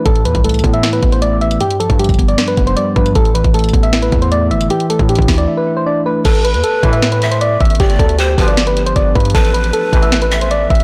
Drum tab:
CC |------------------------------------------------------------------------------------------------|------------------------------------------------------------------------------------------------|------------------------------------------------------------------------------------------------|------------------------------------------------------------------------------------------------|
HH |x-----x-----x-----x-----x--x--x--x--x-----x-----x-----x-----x-----x-----x-----------x-----x-----|x-----x-----x-----x-----x--x--x--x--x-----x-----x-----x-----x-----x-----x-----------x-----x-----|x-----x-----x-----x-----x--x--x--x--x-----x-----x-----x-----x-----x-----x-----------x-----x-----|x-----x-----x-----x-----x---x---x---o-----x-----------------------------------------------------|
SD |------------------------------------------------o-----------------------------------------------|------------------------------------------------o-----------------------------------------------|------------------------------------------------o-----------------------------------------------|------------------------------------o-----------------------------------------------------------|
BD |o-----------------o-----------------o-----------------------o-----------------------------------|------------------o-----------o-----o-----------------------o-----------------------o-----------|o-----------------o-----------------o-----------------------o-----------------------------------|------------------o-----------o-----o-----------------------------------------------------------|

CC |x-----------------------------------------------------------------------------------------------|------------------------------------------------------------------------------------------------|------------------------------------------------------------------------------------------------|
HH |x-----x-----x-----x-----x-----------x-----x-----x-----x-----x-----x-----x-----------x--x--x--x--|x-----x-----x-----x-----x-----------o-----x-----x-----x-----x-----x-----x-----------x--x--x--x--|x-----x-----x-----x-----x-----------x-----x-----x-----x-----x-----x-----x-----------x--x--x-----|
SD |------------------------------------------------o-----------------------------------------------|------------------------------------------------o-----------------------------------------------|------------------------------------------------o-----------------------------------------------|
BD |o-----------------------------------o-----------------------------------------------o-----------|o-----------o-----------------------o-----------------------------------o-----------o-----------|o-----------------------------------o-----------------------------------------------o-----------|